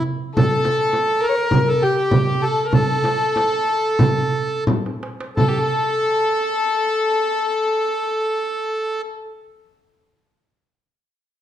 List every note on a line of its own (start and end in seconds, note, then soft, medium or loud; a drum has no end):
0.36 1.22 A4 medium
0.36 1.26 A4 medium
0.36 frame drum loud
0.36 darbuka dum medium
0.64 darbuka tek medium
0.64 frame drum medium
0.80 darbuka ka soft
0.93 darbuka tek medium
0.93 frame drum medium
1.21 1.30 A#4 medium
1.21 1.69 A#4 loud
1.29 1.37 C#5 medium
1.36 1.84 A#4 medium
1.36 darbuka ka soft
1.51 frame drum medium
1.51 darbuka dum medium
1.68 1.83 A4 medium
1.82 2.26 G4 medium
1.82 2.44 G4 medium
1.82 darbuka ka soft
2.11 frame drum medium
2.11 darbuka dum medium
2.27 2.44 G4 medium
2.42 2.72 A4 medium
2.42 2.66 A4 medium
2.65 2.73 A#4 medium
2.73 4.64 A4 medium
2.73 frame drum medium
2.73 darbuka dum medium
3.04 darbuka tek medium
3.04 frame drum medium
3.36 darbuka tek medium
3.36 frame drum medium
3.53 darbuka ka soft
3.69 darbuka ka soft
3.86 darbuka ka soft
3.99 frame drum medium
3.99 darbuka dum medium
4.35 darbuka ka soft
4.67 darbuka tek medium
4.67 frame drum medium
4.86 darbuka ka medium
5.03 darbuka tek medium
5.21 darbuka ka medium
5.36 9.01 A4 medium
5.36 5.50 A4 medium
5.36 frame drum medium
5.36 darbuka dum medium
5.48 5.59 G4 medium
5.58 9.07 A4 medium